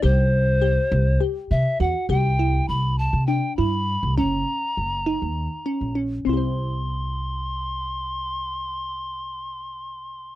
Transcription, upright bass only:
X:1
M:7/8
L:1/16
Q:1/4=101
K:Clyd
V:1 name="Upright bass" clef=bass
C,,6 C,,2 z2 C, z E,, z | C,,4 C,,3 C,2 z G,,3 C,, | F,,,2 z2 F,,,3 _E,,2 z2 ^A,,,3 | C,,12- C,,2- |
C,,12- C,,2 |]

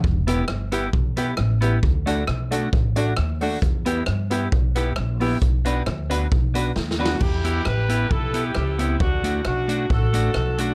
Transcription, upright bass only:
X:1
M:4/4
L:1/8
Q:1/4=134
K:Em
V:1 name="Upright bass" clef=bass
E,,,2 G,,,2 B,,,2 A,,,2 | D,,2 B,,,2 A,,,2 ^D,,2 | E,,2 G,,2 B,,,2 ^A,,,2 | B,,,2 D,,2 B,,,2 ^D,,2 |
E,,2 A,,,2 B,,,2 ^C,,2 | D,,2 B,,,2 A,,,2 B,,,2 |]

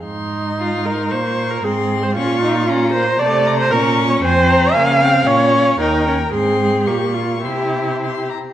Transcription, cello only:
X:1
M:2/4
L:1/8
Q:1/4=114
K:Ab
V:1 name="Cello" clef=bass
A,,4 | B,,2 A,,2 | B,,4 | C,2 B,,2 |
[K:Cphr] F,,2 D,2 | B,,2 E,,2 | A,,2 B,,2 | C,3 z |]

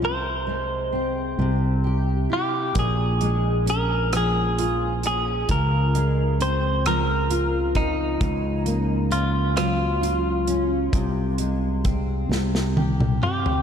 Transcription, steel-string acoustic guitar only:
X:1
M:6/8
L:1/8
Q:3/8=44
K:Bbdor
V:1 name="Steel-string acoustic guitar"
C, A, C C, G =E | B,, A, D F, F D | D, A, C F, F C | D, B, D _G, F D |
C, A, C C, G C |]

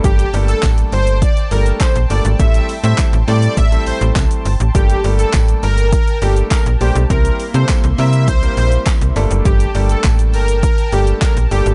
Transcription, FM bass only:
X:1
M:4/4
L:1/16
Q:1/4=102
K:Gdor
V:1 name="FM bass" clef=bass
G,,,2 G,,,2 A,,,2 G,,,3 z G,,,2 z B,,, G,,, _A,,, | A,,,2 z A,, z A,,, A,,2 A,,,2 A,,, A,,, C,, z G,,, A,,, | G,,,2 G,,,2 A,,,2 G,,,3 z G,,,2 z B,,, B,,, =B,,, | C,,2 z C, z C,, C,2 C,,2 B,,,2 z C,, G,,, ^F,,, |
G,,,2 G,,,2 A,,,2 G,,,3 z G,,,2 z B,,, G,,, _A,,, |]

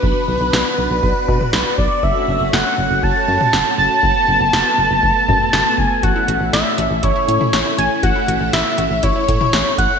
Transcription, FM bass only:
X:1
M:4/4
L:1/16
Q:1/4=120
K:F#m
V:1 name="FM bass" clef=bass
B,,, z B,,, B,,, B,,, z B,,, B,,, B,,, z B,, z B,,, z B,,, z | F,,, z F,,, F,,, F,,, z F,,, F,,, F,,, z F,, z F,,, z F,,, z | F,,, z F,,, F,,, F,,, z F,,, F,,, F,,, z F,, z F,,, z F,,, z | A,,, z A,,, A,,, A,,, z A,,, A,,, A,,, z A,, z A,,, z A,,, z |
A,,, z A,,, A,,, A,,, z A,,, A,,, A,,, z A,, z A,,, z A,,, z |]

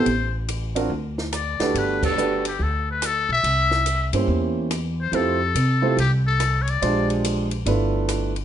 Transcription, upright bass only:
X:1
M:4/4
L:1/8
Q:"Swing" 1/4=142
K:Gmix
V:1 name="Upright bass" clef=bass
A,,,4 D,,3 D,, | G,,,4 D,,3 B,,, | C,,3 G,, E,,4 | F,,2 C,2 C,,4 |
_B,,,4 G,,,4 |]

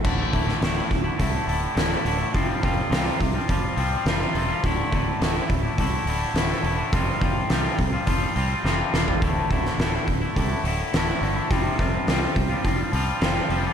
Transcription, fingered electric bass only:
X:1
M:4/4
L:1/8
Q:1/4=105
K:Dm
V:1 name="Fingered electric bass" clef=bass
D,,, D,,, D,,, D,,, C,, D,,, D,,, D,,, | F,,, F,,, C,, C,, F,,, C,, F,,, E,,, | D,,, D,,, D,,, D,,, C,, D,,, D,,, E,,, | F,,, F,,, C,, C,, F,,, C,, F,,, E,,, |
D,,, D,,, D,,, D,,, C,, D,,, D,,, G,,, | F,,, F,,, C,, C,, F,,, C,, F,,, F,,, |]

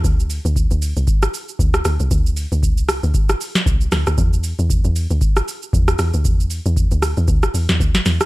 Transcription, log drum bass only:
X:1
M:4/4
L:1/16
Q:"Swing 16ths" 1/4=116
K:C
V:1 name="Log drum bass" clef=bass
D,,3 D,,2 D,,2 C,, z4 D,,2 D,, C,, | D,,3 D,,2 C,,2 D,, z4 C,,2 D,, D,, | E,,3 E,,2 E,,2 D,, z4 E,,2 E,, D,, | E,,3 E,,2 D,,2 E,, D,, z E,, E,, D,, z E,, z |]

